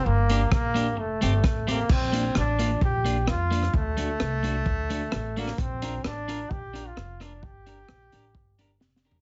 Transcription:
<<
  \new Staff \with { instrumentName = "Clean electric guitar" } { \time 4/4 \key bes \major \tempo 4 = 130 r8 <bes d' g'>16 r8. <bes d' g'>16 r8. <a c' g'>16 r8. <a c' g'>16 r16 | r8 <bes d' f'>16 r8. <bes d' f'>16 r8. <bes d' f'>16 r8. <bes d' f'>16 r16 | r8 <a d' fis'>16 r8. <a d' fis'>16 r8. <a d' fis'>16 r8. <a d' fis'>16 r16 | r8 <d' f' bes'>16 r8. <d' f' bes'>16 r8. <d' f' bes'>16 r8. <d' f' bes'>16 r16 |
r8 <d' g' bes'>16 r8. <d' g' bes'>16 r8. <d' g' bes'>16 r8. <d' g' bes'>16 r16 | }
  \new Staff \with { instrumentName = "Trombone" } { \time 4/4 \key bes \major bes4 bes4 a4. bes8 | c'4 d'4 g'4 f'4 | a2.~ a8 bes8 | c'4 d'4 g'8. f'8. d'8 |
g'2. r4 | }
  \new Staff \with { instrumentName = "Upright bass" } { \clef bass \time 4/4 \key bes \major g,,4 bes,,4 f,,8 g,,8 a,,4 | bes,,4 a,,4 bes,,4 f,4 | d,4 c,4 d,4 a,,4 | bes,,4 a,,4 bes,,4 f,,4 |
g,,4 bes,,8 a,,8 g,,4 f,,4 | }
  \new DrumStaff \with { instrumentName = "Drums" } \drummode { \time 4/4 r8 hh8 <bd ss>8 hh8 r8 hh8 <bd ss>8 hh8 | <cymc bd>8 hh8 ss8 hh8 bd8 hh8 ss8 hh16 ss16 | bd8 hh8 ss8 hh8 bd8 hh8 ss8 hho16 ss16 | <hhp bd>8 hh8 ss8 hh8 bd8 hh8 ss8 <hh ss>8 |
bd8 hh8 ss8 hh8 bd8 hh8 \tuplet 3/2 { sn8 sn8 tomfh8 } | }
>>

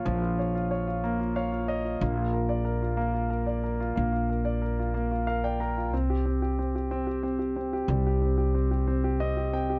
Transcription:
<<
  \new Staff \with { instrumentName = "Grand piano" } { \time 6/8 \key bes \dorian \tempo 4. = 61 << { r2 f''8 ees''8 | r2. | r2 f''16 g''16 bes''8 | r2. |
r2 ees''8 g''8 | } \\ { <f bes f' des''>16 f'16 des''16 f'16 des''16 f'16 bes16 f'16 des''16 f'16 des''16 f'16 | bes16 f'16 bes'16 d''16 bes'16 f'16 bes16 f'16 bes'16 d''16 bes'16 f'16 | bes16 f'16 bes'16 d''16 bes'16 f'16 bes16 f'16 bes'16 d''16 bes'16 f'16 | c'16 g'16 c'16 g'16 c'16 g'16 c'16 g'16 c'16 g'16 c'16 g'16 |
g16 g'16 c'16 g'16 c'16 g'16 c'16 g'16 c'16 g'16 c'16 g'16 | } >> }
  \new Staff \with { instrumentName = "Upright bass" } { \clef bass \time 6/8 \key bes \dorian bes,,2. | bes,,2. | bes,,2. | c,2. |
c,2. | }
>>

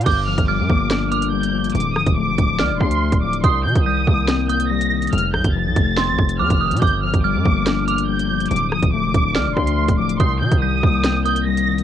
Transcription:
<<
  \new Staff \with { instrumentName = "Violin section" } { \time 4/4 \key g \minor \tempo 4 = 142 g'''8 f'''8 d'''4. f'''8 g'''4 | d'''8 ees'''8 d'''4. c'''4 d'''8 | c'''8 g'''8 ees'''4. g'''8 bes'''4 | f'''8 g'''8 a'''2 f'''4 |
g'''8 f'''8 d'''4. f'''8 g'''4 | d'''8 ees'''8 d'''4. c'''4 d'''8 | c'''8 g'''8 ees'''4. g'''8 bes'''4 | }
  \new Staff \with { instrumentName = "Synth bell" } { \time 4/4 \key g \minor d'''4 f'''4. d'''4. | r2 f'''2 | ees'''4 g'''4. ees'''4. | r2 c'''4 d'''8 ees'''8 |
d'''4 f'''4. d'''4. | r2 f'''2 | ees'''4 g'''4. ees'''4. | }
  \new Staff \with { instrumentName = "Synth keys" } { \clef bass \time 4/4 \key g \minor g,8 f8 g8 bes8 d'8 bes8 g8 f8 | d8 f8 a8 d'8 d''8 d'8 a8 f8 | c8 ees8 g8 bes8 c'8 bes8 g8 ees8 | f,8 ees8 f8 a8 c'8 a8 f8 ees8 |
g,8 f8 g8 bes8 d'8 bes8 g8 f8 | d8 f8 a8 d'8 d''8 d'8 a8 f8 | c8 ees8 g8 bes8 c'8 bes8 g8 ees8 | }
  \new Staff \with { instrumentName = "808-style bass" } { \clef bass \time 4/4 \key g \minor g,,8. g,,8 g,16 g,,2~ g,,8 | d,,8 c,,16 d,,8 f,,16 d,,8 d,16 d,,16 d,8. d,,8. | c,8 c16 c,8. c,2~ c,8 | f,,8 c,16 f,,8 c,16 f,,8. a,,16 f,,8 f,16 f,,8 c16 |
g,,8. g,,8 g,16 g,,2~ g,,8 | d,,8 c,,16 d,,8 f,,16 d,,8 d,16 d,,16 d,8. d,,8. | c,8 c16 c,8. c,2~ c,8 | }
  \new DrumStaff \with { instrumentName = "Drums" } \drummode { \time 4/4 <cymc hh bd>32 hh8 r32 <hh bd>16 r8 bd8 <hh sn>8 hh16 hh16 r16 hh8 hh32 hh32 | hh32 hh16. ss16 <hh bd>16 r8 <hh bd>8 sn8 bd16 hh16 r16 <hh bd>8 hh16 | <hh bd>8. <hh bd>16 r8 bd8 <hh sn>8 hh16 hh16 r16 hh8 hh32 hh32 | hh32 hh16. ss16 <hh bd>16 r8 <hh bd>8 sn8 bd16 hh16 r16 <hh bd>8 hh32 hh32 |
<hh bd>32 hh8 r32 <hh bd>16 r8 bd8 <hh sn>8 hh16 hh16 r16 hh8 hh32 hh32 | hh32 hh16. ss16 <hh bd>16 r8 <hh bd>8 sn8 bd16 hh16 r16 <hh bd>8 hh16 | <hh bd>8. <hh bd>16 r8 bd8 <hh sn>8 hh16 hh16 r16 hh8 hh16 | }
>>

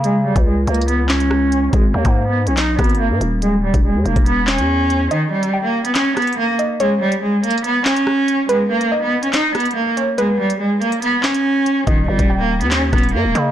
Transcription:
<<
  \new Staff \with { instrumentName = "Synth pluck" } { \time 4/4 \key dis \phrygian \tempo 4 = 142 r1 | r1 | r1 | dis''4 g''4 r4. dis''8 |
cis''2. r4 | b'4 dis''4 r4. cis''8 | b'1 | dis''4 g''4 r4. dis''8 | }
  \new Staff \with { instrumentName = "Cello" } { \time 4/4 \key dis \phrygian gis8 g8 gis8 ais8 b8 cis'4. | gis8 ais8. b8 cis'16 dis'8 b8 ais8 r8 | gis8 g8 gis8 ais8 b8 cis'4. | dis8 g8. ais8 b16 cis'8 b8 ais8 r8 |
gis8 g8 gis8 ais8 b8 cis'4. | gis8 ais8. b8 cis'16 dis'8 b8 ais8 r8 | gis8 g8 gis8 ais8 b8 cis'4. | dis8 g8. ais8 b16 cis'8 b8 ais8 r8 | }
  \new Staff \with { instrumentName = "808-style bass" } { \clef bass \time 4/4 \key dis \phrygian cis8. cis,8. cis,2~ cis,8 | gis,,8 dis,16 gis,4 b,,8. gis,,8. gis,16 dis,,8~ | dis,,8. e,,8 e,16 e,,16 e,,4 e,4~ e,16 | r1 |
r1 | r1 | r1 | dis,,8 g,,16 dis,,4 dis,8. dis,,8 g,16 dis,,16 cis8 | }
  \new DrumStaff \with { instrumentName = "Drums" } \drummode { \time 4/4 hh8. <hh bd>16 \tuplet 3/2 { r16 r16 r16 hh16 hh16 hh16 } hh8 <hc sn>16 hh16 ss8 hh8 | <hh bd>8. <hh bd>16 r8. hh16 <hc hh sn>8 <hh bd ss>32 hh32 hh32 hh32 r8 hh8 | hh8. <hh bd>16 r8 hh16 <hh bd>16 hh8 <hc sn>16 hh16 r8 hh8 | hh8. hh16 r8. hh16 <hc hh sn>8 <hh ss>32 hh32 hh32 hh32 r8 hh8 |
hh8. hh16 \tuplet 3/2 { r16 r16 r16 hh16 hh16 hh16 } hh8 <hc sn>16 hh16 ss8 hh8 | hh8. hh16 r8. hh16 <hc hh sn>8 <hh ss>32 hh32 hh32 hh32 r8 hh8 | hh8. hh16 r8 hh16 hh16 hh8 <hc sn>16 hh16 r8 hh8 | <hh bd>8. <hh bd>16 r8. hh16 <hc hh sn>8 <hh bd ss>32 hh32 hh32 hh32 r8 hh8 | }
>>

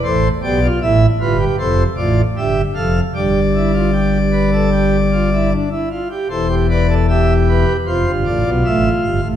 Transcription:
<<
  \new Staff \with { instrumentName = "Pipe organ" } { \time 4/4 \key c \major \tempo 4 = 77 << { c''8 d''8 e''8 b'8 c''8 d''8 e''8 f''8 | d''2.~ d''8 r8 | c''8 d''8 e''8 b'8 c''8 d''8 e''8 f''8 | } \\ { a'8 g'16 f'16 e'8 f'16 g'16 a'8 f'8 g'8 a'8 | g'8 e'16 f'16 g'8 b'16 a'16 g'8 f'16 e'16 d'16 e'16 f'16 g'16 | a'16 g'16 b'16 a'16 g'4 f'2 | } >> }
  \new Staff \with { instrumentName = "Pipe organ" } { \clef bass \time 4/4 \key c \major <a,, a,>8 <b,, b,>8 <a,, a,>8 <g,, g,>8 <f,, f,>8 <a,, a,>8 <g,, g,>8 <f,, f,>8 | <g,, g,>2.~ <g,, g,>8 r8 | <e,, e,>2 <f,, f,>16 <g,, g,>16 <a,, a,>16 <b,, b,>16 <a,, a,>8 <g,, g,>16 <a,, a,>16 | }
>>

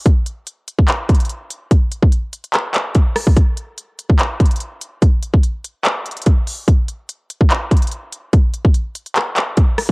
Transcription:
\new DrumStaff \with { instrumentName = "Drums" } \drummode { \time 4/4 \tempo 4 = 145 <hh bd>8 hh8 hh8 hh16 bd16 <hc hh>8 <hh bd>32 hh32 hh32 hh32 hh8 hh8 | <hh bd>8 hh16 bd16 hh8 hh16 hh16 <hc hh>8 <hc hh>8 <hh bd>8 <hho ss>16 bd16 | <hh bd>8 hh8 hh8 hh16 bd16 <hc hh>8 <hh bd>32 hh32 hh32 hh32 hh8 hh8 | <hh bd>8 hh16 bd16 hh8 hh8 <hc hh>8 hh32 hh32 hh32 hh32 <hh bd>8 hho8 |
<hh bd>8 hh8 hh8 hh16 bd16 <hc hh>8 <hh bd>32 hh32 hh32 hh32 hh8 hh8 | <hh bd>8 hh16 bd16 hh8 hh16 hh16 <hc hh>8 <hc hh>8 <hh bd>8 <hho ss>8 | }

